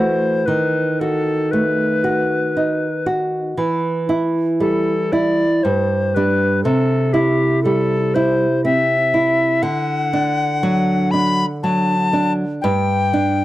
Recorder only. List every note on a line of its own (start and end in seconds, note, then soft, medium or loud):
0.00 0.47 C5 soft
0.46 1.01 B4 soft
1.00 1.53 A4 soft
1.51 3.07 B4 medium
4.60 5.14 A4 medium
5.12 5.65 D5 medium
5.63 6.16 C5 medium
6.14 6.63 B4 medium
6.64 7.14 A4 medium
7.13 7.62 G4 medium
7.63 8.16 A4 medium
8.14 8.64 C5 medium
8.64 9.64 E5 medium
9.62 11.12 F#5 medium
11.11 11.45 B5 medium
11.63 12.32 A5 medium
12.61 13.45 G5 medium